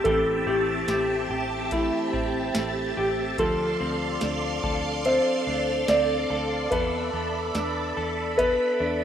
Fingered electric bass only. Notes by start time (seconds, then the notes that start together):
0.05 A1
0.46 A1
0.88 A1
1.30 A1
2.14 A1
2.55 A1
2.97 A1
3.38 D2
3.81 D2
4.22 D2
4.64 D2
5.47 D2
5.88 D2
6.30 D2
6.72 E2
7.13 E2
7.55 E2
7.97 E2
8.80 E2